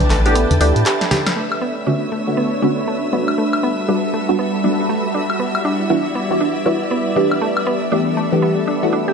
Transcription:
Already playing: E3 A3 B3 D4 E4 G4 A4 B4 E5 G5 A5 A6
0.00 closed hi-hat, high conga, low conga
0.10 A1 A3, clap, open hi-hat
0.25 E3 A3 B3 D4 G4 B5, closed hi-hat
0.35 B3, closed hi-hat
0.51 E2, closed hi-hat, low conga
0.61 D2 E3 A3 B3 D4 G4, open hi-hat
0.76 A2, closed hi-hat
0.86 G4, clap, closed hi-hat
1.01 snare, closed hi-hat
1.11 G4, snare, open hi-hat, low conga
1.27 snare, closed hi-hat, high woodblock
1.36 A3 B3 D4 B4 C#5 E5 E6
1.52 high woodblock
1.61 B3
1.87 D3 A3 B3 C#4 F#4
2.12 A3
2.27 D3 A3 B3 C#4 D4 F#4
2.37 B3
2.62 D3 A3 B3 C#4 F#4
2.88 A3
3.12 G3 A3 B3 D4 F#4
3.28 high woodblock
3.38 G3 A3 F#4 A4
3.53 high woodblock
3.63 B3
3.85 G3 A3 B3 D4 F#4 B5
3.96 A5
4.14 A3
4.29 G3 A3 B3 D4 F#4
4.39 B3
4.64 G3 A3 B3 D4 F#4
4.89 A3
5.14 D4 E4 D5
5.30 high woodblock
5.40 B3
5.55 high woodblock
5.65 D4
5.90 E3 G3 B3 D4 E4 F#4 B4
6.15 B3
6.30 E3 G3 B3 D4 F#4
6.41 D4
6.66 E3 G3 B3 D4 E4 F#4
6.91 B3
7.16 E3 A3 B3 D4 G4
7.31 high woodblock
7.41 G3 A3 B3 A4
7.57 high woodblock
7.67 B3
7.92 E3 A3 B3 D4 G4
7.99 E5
8.17 A3
8.32 E3 A3 B3 D4 G4 B5
8.42 B3
8.68 D4
8.83 E3 A3 B3 D4 F#4
8.93 D4
9.08 G4

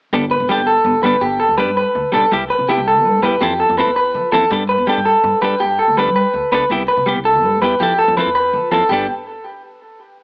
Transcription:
0.13 G1 G3 B3 D4 A4
0.31 B4
0.40 E1
0.49 G3 B3 D4 G4 A4
0.58 G1
0.67 A4
0.84 G1
1.03 G1 G3 B3 D4 A4 B4
1.21 G1 G4
1.40 A4
1.49 D2
1.58 G3 B3 D4 B4, muted clean electric guitar stroke
1.67 G2
1.77 B4
1.95 D2
2.12 B1 G3 B3 D4 A4
2.32 C2 G3 E4 G4, muted clean electric guitar stroke
2.50 B4
2.59 C3
2.69 B3 E4 G4, muted clean electric guitar stroke
2.78 C2
2.88 A4
3.05 G2
3.23 E2 G3 B3 E4 G4 B4
3.41 F2 E3 C4 E4 G4 A4
3.60 A4
3.69 F2
3.77 C4 E4 A4 B4, muted clean electric guitar stroke
3.87 E2
3.96 B4
4.14 F3
4.32 F2 E3 C4 E4 A4
4.50 G2 G3 B3 D4 A4
4.69 B4
4.78 E2
4.87 G3 B3 D4 G4 A4
4.97 G2
5.05 A4
5.24 G2
5.42 G2 G3 D4 A4 B4, muted clean electric guitar stroke
5.60 G2 G4
5.79 A4
5.88 D2
5.97 G3 B3 D4 A4 B4
6.07 G3
6.16 B4
6.34 D2
6.52 C#2 B3 D4 A4 B4
6.70 C2 G3 B3 E4 G4
6.88 B4
6.97 C3
7.06 G3 B3 G4, muted clean electric guitar stroke
7.15 C2
7.25 A4
7.43 G2
7.62 E2 G3 B3 E4 G4 B4
7.80 F2 F3 E4 G4 A4, muted clean electric guitar stroke
7.99 A4
8.08 F2
8.17 F3 C4 E4 A4 B4
8.26 E2
8.35 B4
8.53 F3
8.71 F#2 F3 C4 E4 A4
8.89 G1 G3 B3 D4 G4
8.93 A4

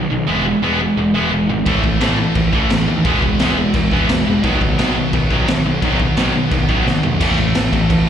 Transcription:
0.10 B1 B2 D#3
0.27 E1 E3 G#3 B3
0.46 E3 G#3
0.62 E1 E3 G#3 B3
0.80 E3 G#3
0.97 E1 E3 G#3
1.14 E1 E3 G#3 B3
1.32 E1 E3 G#3
1.49 G#1 E3 G#3
1.66 A1 A2 E3 A3, kick, crash
1.83 A1 A2 E3, kick
2.00 A1 A2 E3 A3, snare, crash
2.18 A2 E3
2.35 A1 A2 E3 A3, kick, crash
2.52 A1 A2 E3 A3, kick
2.70 A1 A2 E3, snare, crash
2.88 D#2 A2 E3
3.04 E1 E2 B2 E3 G#3 B3, kick, crash
3.22 E3 G#3, kick
3.39 E1 E3 G#3 B3, snare, crash
3.58 E3 G#3
3.73 E1 E2 B2 E3 G#3, kick, crash
3.91 E1 E3 G#3 B3, kick
4.09 E1 E3 G#3, snare, crash
4.27 E1 E3 G#3
4.43 B1 B2 D#3 F#3 B3, kick, crash
4.61 B1 B2 D#3, kick
4.79 B1 B2 D#3 F#3, snare, crash
4.97 B2 D#3
5.13 B1 B2 D#3 F#3 B3, kick, crash
5.31 B1 B2 D#3 F#3, kick
5.48 B1 B2 D#3, snare, crash
5.65 B1 B2 D#3
5.82 B1 B2 D#3 F#3 B3, kick, crash
6.00 B2 D#3, kick
6.17 B1 B2 D#3 F#3, snare, crash
6.35 B2 D#3
6.51 B1 B2 D#3 F#3 B3, kick, crash
6.69 B1 B2 D#3 F#3, kick
6.86 B1 B2 D#3, snare
7.03 B1 B2 D#3, floor tom
7.20 A1 A2 E3 A3, kick, crash
7.38 A1 A2 E3, crash
7.55 A1 A2 E3, snare, crash
7.71 A1 A2 E3 A3, kick, crash
7.89 A1 A2 E3, kick, crash

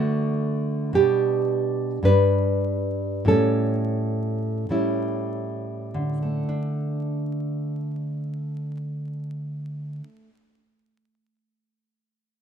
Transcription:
Already playing: D3 A3 F#4
0.93 B2 G3 D4 G4
2.03 G2 G3 D4 B4
3.25 A2 G3 C#4 A4
4.69 A2 G3 C#4 E4
5.94 D3
6.22 A3
6.49 D4

